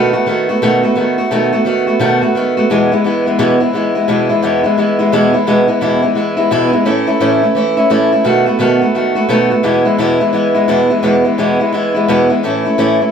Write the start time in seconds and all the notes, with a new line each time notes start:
Already playing: B2 D#3 A3 B3 F#4
0.13 A3 B3 F#4
0.26 D#3 A3 B3 F#4
0.49 A3 B3 F#4
0.62 B2 D#3 A3 B3 F#4
0.83 A3 B3 F#4
0.96 D#3 A3 B3 F#4
1.18 A3 B3 F#4
1.31 B2 D#3 A3 B3 F#4
1.53 A3 B3 F#4
1.65 D#3 A3 B3 F#4
1.87 A3 B3 F#4
1.99 B2 D#3 A3 B3 F#4
2.21 A3 B3 F#4
2.35 D#3 A3 B3 F#4
2.57 A3 B3 F#4
2.70 E2 B2 E3 G#3 B3 E4
2.92 E3 G#3 B3 E4
3.04 E3 G#3 B3 E4
3.26 E3 G#3 B3 E4
3.39 E2 B2 E3 G#3 B3 E4
3.60 E3 G#3 B3 E4
3.73 E3 G#3 B3 E4
3.95 E3 G#3 B3 E4
4.08 E2 B2 E3 G#3 B3 E4
4.29 E3 G#3 B3 E4
4.42 E2 B2 E3 G#3 B3 E4
4.63 E3 G#3 B3 E4
4.77 E3 G#3 B3 E4
4.99 E3 G#3 B3 E4
5.12 E2 B2 E3 G#3 B3 E4
5.33 E3 G#3 B3 E4
5.47 E2 B2 E3 G#3 B3 E4
5.67 E3 G#3 B3 E4
5.81 E2 B2 E3 G#3 B3 E4
6.02 E3 G#3 B3 E4
6.15 E3 G#3 B3 E4
6.37 E3 G#3 B3 E4
6.51 E2 B2 E3 G#3 B3 E4
6.72 E3 G#3 B3 E4
6.85 A2 E3 A3 C#4 E4
7.07 A3 C#4 E4
7.20 A2 E3 A3 C#4 E4
7.42 A3 C#4 E4
7.55 E3 A3 C#4 E4
7.77 A3 C#4 E4
7.90 A2 E3 A3 C#4 E4
8.12 A3 C#4 E4
8.24 B2 D#3 A3 B3 F#4
8.46 A3 B3 F#4
8.59 B2 D#3 A3 B3 F#4
8.81 A3 B3 F#4
8.95 D#3 A3 B3 F#4
9.15 A3 B3 F#4
9.29 B2 D#3 A3 B3 F#4
9.50 A3 B3 F#4
9.63 E2 B2 E3 G#3 B3 E4
9.85 E3 G#3 B3 E4
9.98 E2 B2 E3 G#3 B3 E4
10.20 E3 G#3 B3 E4
10.33 E3 G#3 B3 E4
10.54 E3 G#3 B3 E4
10.68 E2 B2 E3 G#3 B3 E4
10.90 E3 G#3 B3 E4
11.03 E2 B2 E3 G#3 B3 E4
11.24 E3 G#3 B3 E4
11.38 E2 B2 E3 G#3 B3 E4
11.59 E3 G#3 B3 E4
11.73 E3 G#3 B3 E4
11.94 E3 G#3 B3 E4
12.08 E2 B2 E3 G#3 B3 E4
12.29 E3 G#3 B3 E4
12.43 A2 E3 A3 C#4 E4
12.65 A3 C#4 E4
12.78 A2 E3 A3 C#4 E4
12.99 A3 C#4 E4